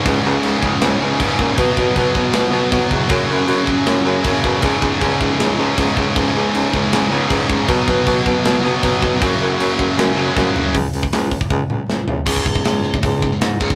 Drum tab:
CC |x---x---x---x---|x---x---x---x---|x---x---x---x---|x---x---x---x---|
HH |----------------|----------------|----------------|----------------|
SD |--------o-------|--------o-------|--------o-------|--------o-------|
T2 |----------------|----------------|----------------|----------------|
FT |----------------|----------------|----------------|----------------|
BD |o-----o-----o-o-|o-o-o-o-----o-o-|o-----o-----o-o-|o-o-o-o-----o-o-|

CC |x---x---x---x---|x---x---x---x---|x---x---x-------|----------------|
HH |----------------|----------------|----------------|o-o-o-o---------|
SD |--------o-------|--------o-------|--------o---o---|----o-------o---|
T2 |----------------|----------------|----------------|----------o-----|
FT |----------------|----------------|--------------o-|--------------o-|
BD |o-----o-----o-o-|o-o-o-o-----o-o-|o-----o-----o---|o--o--ooo-------|

CC |x---------------|
HH |----o---o---o---|
SD |----o-------o---|
T2 |----------------|
FT |----------------|
BD |oooo---oo-o---oo|